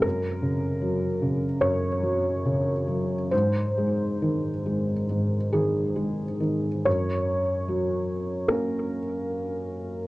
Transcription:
<<
  \new Staff \with { instrumentName = "Felt piano" } { \time 4/4 \key ges \lydian \tempo 4 = 72 bes'2 des''2 | c''2~ c''8 aes'4. | des''2 bes'2 | }
  \new Staff \with { instrumentName = "Felt piano" } { \clef bass \time 4/4 \key ges \lydian ges,8 des8 ges8 des8 ges,8 ges8 des8 ges8 | aes,8 aes8 ees8 aes8 aes,8 ees8 aes8 ees8 | ges,4 ges4 <bes des'>2 | }
>>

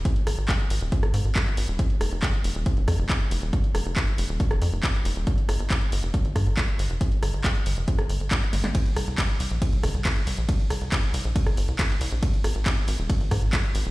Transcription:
<<
  \new Staff \with { instrumentName = "Analog synth bass" } { \clef bass \time 4/4 \key c \minor \tempo 4 = 138 r8 aes,,16 aes,,16 r8 aes,,16 ees,,16 r16 aes,,16 aes,16 aes,,16 r8 aes,,16 ees,,16 | r8 f,,16 f,,16 r8 f,,16 ees,,16 r16 f,,16 f,16 f,,16 r8 f,,16 ees,,16 | r8 f,,16 f,,16 r8 f,,16 ees,,16 r16 f,,16 f,16 f,,16 r8 f,,16 ees,,16 | r8 g,,16 g,,16 r8 g,,16 f,,16 r16 g,,16 g,16 g,,16 r8 g,,16 f,,16 |
r8 g,,16 g,,16 r8 g,,16 f,,16 r16 g,,16 g,,16 g,,16 r8 g,,16 g,,16 | r8 c,16 c,16 r8 c,16 bes,,16 r16 c,16 g,,16 c,16 r8 c,16 bes,,16 | r8 c,16 c,16 r8 c,16 bes,,16 r16 c,16 g,,16 c,16 r8 c,16 bes,,16 | r8 aes,,16 aes,,16 r8 aes,,16 ees,,16 r16 aes,,16 aes,16 aes,,16 r8 aes,,16 ees,,16 | }
  \new DrumStaff \with { instrumentName = "Drums" } \drummode { \time 4/4 <hh bd>16 hh16 <hho ss>16 hh16 <hc hh bd>16 hh16 hho16 hh16 <hh bd>16 <hh ss>16 hho16 hh16 <hc hh bd>16 <hc hh>16 hho8 | <hh bd>16 hh16 <hho ss>16 hh16 <hc hh bd>16 hh16 hho16 hh16 <hh bd>16 hh16 <hho bd ss>16 hh16 <hc hh bd>16 hh16 hho8 | <hh bd>16 hh16 <hho ss>16 hh16 <hc hh bd>16 hh16 hho16 hh16 <hh bd>16 <hh ss>16 hho16 hh16 <hc hh bd>16 <hc hh>16 hho16 hh16 | <hh bd>16 hh16 <hho ss>16 hh16 <hc hh bd>16 hh16 hho16 hh16 <hh bd>16 hh16 <hho bd ss>16 hh16 <hc hh bd>16 hh16 hho16 hh16 |
<hh bd>16 hh16 <hho ss>16 hh16 <hc hh bd>16 hh16 hho16 hh16 <hh bd>16 <hh ss>16 hho16 hh16 <hc hh bd>16 <hc hh>16 <hho sn>16 <hh sn>16 | <hh bd cymr>16 hh16 <hho ss>16 hh16 <hc hh bd cymr>16 hh16 hho16 hh16 <hh bd cymr>16 hh16 <hho bd ss>16 hh16 <hc hh bd cymr>16 hh16 hho16 hh16 | <hh bd cymr>16 hh16 <hho ss>16 hh16 <hc hh bd cymr>16 hh16 hho8 <hh bd cymr>16 <hh ss>16 hho16 hh16 <hc hh bd cymr>16 <hc hh>16 hho16 hh16 | <hh bd cymr>16 hh16 <hho ss>16 hh16 <hc hh bd cymr>16 hh16 hho8 <hh bd cymr>16 hh16 <hho bd ss>16 hh16 <hc hh bd cymr>16 hh16 hho16 hh16 | }
>>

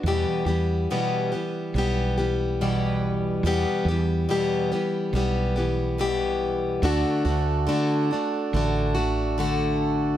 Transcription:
<<
  \new Staff \with { instrumentName = "Harmonium" } { \time 4/4 \key e \minor \tempo 4 = 71 r1 | r1 | <fis' a' d'' a''>1 | }
  \new Staff \with { instrumentName = "Steel-string acoustic guitar" } { \time 4/4 \key e \minor <e, b, e g b g'>8 <e g b g'>8 <e, b, e g b g'>8 <e g b g'>8 <e g b g'>8 <e g b g'>8 <e, b, e g b g'>4 | <e, b, e g b g'>8 <e g b g'>8 <e, b, e g b g'>8 <e g b g'>8 <e g b g'>8 <e g b g'>8 <e, b, e g b g'>4 | <d a d' fis'>8 <a d' fis'>8 <d a d' fis'>8 <a d' fis'>8 <d a d' fis'>8 <a d' fis'>8 <d a d' fis'>4 | }
  \new Staff \with { instrumentName = "Fretless electric bass" } { \clef bass \time 4/4 \key e \minor e,16 r16 e,8 r4 b,,2 | e,16 r16 e,8 r4 b,,2 | d,16 r16 d,8 r4 a,,2 | }
>>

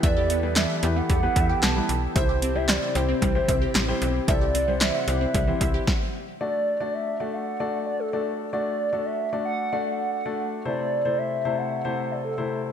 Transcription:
<<
  \new Staff \with { instrumentName = "Soft synth lead" } { \time 4/4 \key d \mixolydian \tempo 4 = 113 d''4 e''8. fis''4 g''16 a''8. r16 | c''8. e''16 d''8 c''2 r8 | d''4 e''8 e''4. r4 | d''4 e''8. fis''4 d''16 a'8. r16 |
d''4 e''8. fis''4 fis''16 fis''8. r16 | d''4 e''8. fis''4 d''16 a'8. r16 | }
  \new Staff \with { instrumentName = "Grand piano" } { \time 4/4 \key d \mixolydian <b e' g' b'>8. <b e' g' b'>8. <b e' g' b'>8. <b e' g' b'>4 <b e' g' b'>8. | <c' e' g' c''>8. <c' e' g' c''>8. <c' e' g' c''>8. <c' e' g' c''>4 <c' e' g' c''>8. | <c' e' g' a'>8. <c' e' g' c''>8. <c' e' g' c''>8. <c' e' g' c''>8. r4 | <a d' fis' a' d''>8. <a d' fis' a' d''>8. <a d' fis' a' d''>8. <a d' fis' a' d''>4 <a d' fis' a' d''>8. |
<a d' fis' a' d''>8. <a d' fis' a' d''>8. <a d' fis' a' d''>8. <a d' fis' a' d''>4 <a d' fis' a' d''>8. | <c a c' e' a' c''>8. <c a c' e' a' c''>8. <c a c' e' a' c''>8. <c a c' e' a' c''>4 <c a c' e' a' c''>8. | }
  \new Staff \with { instrumentName = "Analog synth pad" } { \time 4/4 \key d \mixolydian << { <e a'>1 | <c c'>1~ | <c c'>2. r4 | r1 |
r1 | r1 | } \\ { <e' g'>1~ | <e' g'>1 | fis''2. r4 | r1 |
r1 | r1 | } >> }
  \new Staff \with { instrumentName = "Synth pluck" } { \time 4/4 \key d \mixolydian e''16 g'16 b16 g16 e16 e''16 g'16 b16 g16 e16 e''16 g'16 b16 g16 e16 r16 | e''16 g'16 c'16 g16 e16 e''16 g'16 c'16 g16 e16 e''16 g'16 c'16 g16 e16 r16 | e''16 g'16 c'16 g16 e16 e''16 g'16 c'16 g16 e16 e''16 g'16 r4 | r1 |
r1 | r1 | }
  \new Staff \with { instrumentName = "FM bass" } { \clef bass \time 4/4 \key d \mixolydian e,4~ e,16 r16 e,8 e,8 e,8 b,,8 b,,8 | c,4~ c,16 r16 c,8 c,8 c,8 a,,8 b,,8 | c,4~ c,16 r16 c,8 c,8 c,8 r4 | r1 |
r1 | r1 | }
  \new DrumStaff \with { instrumentName = "Drums" } \drummode { \time 4/4 <hh bd>8 hh8 <hc hh sn>8 hh8 <hh bd>8 <hh bd>8 <hc hh sn>8 hh8 | <hh bd>8 hh8 <hc hh sn>8 hh8 <hh bd>8 <hh bd>8 <hc hh sn>8 hh8 | <hh bd>8 hh8 <hc hh sn>8 hh8 <hh bd>8 <hh bd>8 <bd sn>4 | r4 r4 r4 r4 |
r4 r4 r4 r4 | r4 r4 r4 r4 | }
>>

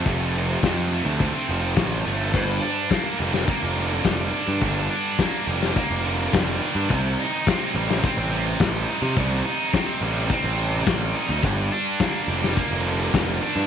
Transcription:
<<
  \new Staff \with { instrumentName = "Distorted electric guitar" } { \clef bass \time 4/4 \key g \minor \tempo 4 = 106 <f, c f a c'>8 c8 c8 a8 c'8 f8 c8 a8 | g,8 d'8 bes8 g8 bes8 d8 g8 d'8 | g,8 d'8 bes8 g8 bes8 d8 g8 d'8 | c8 ees'8 c'8 g8 c'8 c8 g8 ees'8 |
c8 ees'8 c'8 g8 c'8 c8 g8 ees'8 | g,8 d'8 bes8 g8 bes8 d8 g8 d'8 | }
  \new Staff \with { instrumentName = "Picked electric bass" } { \clef bass \time 4/4 \key g \minor f,,4 f,8. d,8 r16 f,,8 a,,8 g,,8 | g,,8 r4 f,,8 r16 f,,8. f,,8 r16 g,16 | g,,8 r4 f,,8 r16 f,,8. f,,8 r16 g,16 | c,8 r4 a,,8 r16 a,,8. a,,8 r16 c16 |
c,8 r4 a,,8 r16 a,,8. a,,8 r16 d,16 | g,,8 r4 f,,8 r16 f,,8. f,,8 r16 g,16 | }
  \new DrumStaff \with { instrumentName = "Drums" } \drummode { \time 4/4 <hh bd>8 hh8 <hh bd sn>8 hh8 <hh bd>8 hh8 <hh bd sn>8 hh8 | <cymc bd>8 hh8 <hh bd sn>8 hh16 sn16 <hh bd>8 hh8 <hh bd sn>8 hh16 sn16 | <hh bd>8 hh8 <hh bd sn>8 hh16 sn16 <hh bd>8 hh8 <hh bd sn>8 hh8 | <hh bd>8 hh8 <hh bd sn>8 hh16 sn16 <hh bd>8 hh8 <hh bd sn>8 hh16 sn16 |
<hh bd>8 hh8 <hh bd sn>8 hh8 <hh bd>8 hh8 <hh bd sn>8 hh16 sn16 | <hh bd>8 hh8 <hh bd sn>8 hh16 sn16 <hh bd>8 hh8 <hh bd sn>8 hh16 sn16 | }
>>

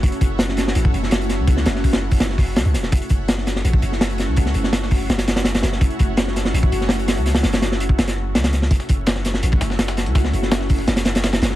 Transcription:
<<
  \new Staff \with { instrumentName = "808-style bass" } { \clef bass \time 4/4 \key fis \minor \tempo 4 = 166 fis,,16 r16 fis,,4. a,,8 fis,,4~ fis,,16 cis,16~ | cis,8 fis,,4. fis,,4 cis,16 cis,16 e,,8 | fis,,16 r16 fis,,4. a,,8 fis,,4~ fis,,16 cis,16~ | cis,8 fis,,4. fis,,4. fis,,8 |
fis,,16 r16 fis,,4. a,,8 fis,,4~ fis,,16 cis,16~ | cis,8 fis,,4. fis,,4 cis,4 | fis,,16 r16 fis,,4. a,,8 fis,,4~ fis,,16 cis,16~ | cis,8 fis,,4. fis,,4. fis,,8 | }
  \new DrumStaff \with { instrumentName = "Drums" } \drummode { \time 4/4 <hh bd>16 hh16 <hh bd>8 <hh sn>16 sn16 <hh sn>16 sn16 hh16 bd16 hh16 sn16 <hh sn>16 hh16 <hh sn>8 | <hh bd>16 sn16 <hh sn>16 sn16 <hho bd>16 <hh sn>8 <hho bd>16 <hh sn>16 sn16 <hho bd>8 <hh sn>16 hh16 <hh sn>16 sn16 | <hh bd>16 hh16 <hh bd>8 <hh sn>16 sn16 <hh sn>16 sn16 hh16 bd16 hh16 sn16 <hh sn>16 hh16 <hh sn>8 | <hh bd>16 sn16 hh16 sn16 <hh sn>16 sn16 <hho bd>8 <hh sn>16 <hh sn>16 <hh sn>16 <hh sn>16 <hh sn>16 <hh sn>16 <hh sn>16 sn16 |
<hh bd>16 hh16 <hh bd>8 <hh sn>16 sn16 <hh sn>16 sn16 hh16 bd16 hh16 sn16 <hh sn>16 hh16 <hh sn>16 hh16 | <hh sn>16 <hh sn>16 <hh sn>16 <hh sn>16 <hh sn>16 sn16 hh16 bd16 <hh sn>16 <hh sn>8. <hh sn>16 <hh sn>16 <hh sn>16 sn16 | <hh bd>16 <hh sn>16 <hh bd>8 <hh sn>16 sn16 <hh sn>16 sn16 hh16 <bd sn>16 <hh sn>16 sn16 <hh sn>16 <hh sn>16 <hh sn>16 hh16 | <hh bd sn>16 sn16 hh16 sn16 <hh sn>16 sn16 <hh hho bd>16 sn16 <hh sn>16 <hh sn>16 <hh sn>16 <hh sn>16 <hh sn>16 <hh sn>16 <hh sn>16 sn16 | }
>>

